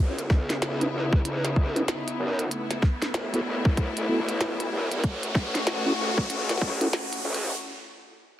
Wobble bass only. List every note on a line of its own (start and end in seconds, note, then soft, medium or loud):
0.00 0.91 C#2 medium
0.93 1.23 E2 medium
1.25 1.86 E2 medium
2.20 2.49 F#2 loud
3.14 3.44 A1 loud
3.46 3.94 B1 medium
3.97 4.07 B1 loud
4.09 4.70 B1 loud
4.72 5.02 F#2 loud
5.03 5.96 A1 loud
5.98 6.28 C#2 loud
6.30 6.73 C#2 loud
6.73 6.91 C2 loud
7.25 7.54 C#2 loud